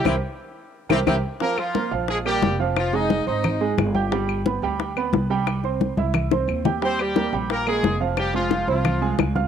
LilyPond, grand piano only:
\new Staff \with { instrumentName = "Grand piano" } { \time 4/4 \key f \minor \tempo 4 = 177 <g' bes' c''>8 r2 <g' bes' c''>8 <g' bes' c''>8 r8 | <f f' f''>4 <bes bes' bes''>8 <f f' f''>4 <bes bes' bes''>4 <f f' f''>8~ | <f f' f''>8 <aes aes' aes''>4 <c' c'' c'''>4 <aes aes' aes''>4 <g' g'' g'''>8 | <g g' g''>4 <b b' b''>8 <g g' g''>4 <b b' b''>4 <g g' g''>8~ |
<g g' g''>8 <c' c'' c'''>4 <e' e'' e'''>4 <c' c'' c'''>4 <g' g'' g'''>8 | <g g' g''>4 <bes bes' bes''>8 <g g' g''>4 <bes bes' bes''>4 <f f' f''>8~ | <f f' f''>8 <aes aes' aes''>4 <c' c'' c'''>4 <aes aes' aes''>4 <f' f'' f'''>8 | }